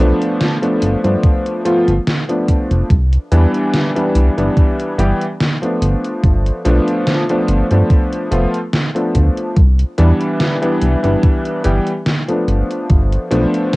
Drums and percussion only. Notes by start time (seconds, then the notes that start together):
0.22 closed hi-hat
0.41 snare, closed hi-hat
0.63 closed hi-hat
0.82 closed hi-hat
1.04 closed hi-hat
1.24 kick, closed hi-hat
1.46 closed hi-hat
1.66 closed hi-hat
1.88 closed hi-hat
2.07 snare, closed hi-hat
2.29 closed hi-hat
2.48 kick, closed hi-hat
2.71 closed hi-hat
2.90 kick, closed hi-hat
3.13 closed hi-hat
3.32 closed hi-hat
3.54 closed hi-hat
3.74 snare, closed hi-hat
3.96 closed hi-hat
4.15 closed hi-hat
4.38 closed hi-hat
4.57 kick, closed hi-hat
4.80 closed hi-hat
4.99 closed hi-hat
5.21 closed hi-hat
5.40 snare, closed hi-hat
5.63 closed hi-hat
5.82 closed hi-hat
6.04 closed hi-hat
6.24 kick, closed hi-hat
6.46 closed hi-hat
6.65 closed hi-hat
6.88 closed hi-hat
7.07 snare, closed hi-hat
7.29 closed hi-hat
7.48 closed hi-hat
7.71 closed hi-hat
7.90 kick, closed hi-hat
8.13 closed hi-hat
8.32 closed hi-hat
8.54 closed hi-hat
8.73 snare, closed hi-hat
8.96 closed hi-hat
9.15 kick, closed hi-hat
9.37 closed hi-hat
9.57 kick, closed hi-hat
9.79 closed hi-hat
9.98 closed hi-hat
10.21 closed hi-hat
10.40 snare, closed hi-hat
10.63 closed hi-hat
10.82 closed hi-hat
11.04 closed hi-hat
11.23 kick, closed hi-hat
11.45 closed hi-hat
11.64 closed hi-hat
11.87 closed hi-hat
12.06 snare, closed hi-hat
12.28 closed hi-hat
12.48 closed hi-hat
12.71 closed hi-hat
12.90 kick, closed hi-hat
13.12 closed hi-hat
13.31 closed hi-hat
13.54 closed hi-hat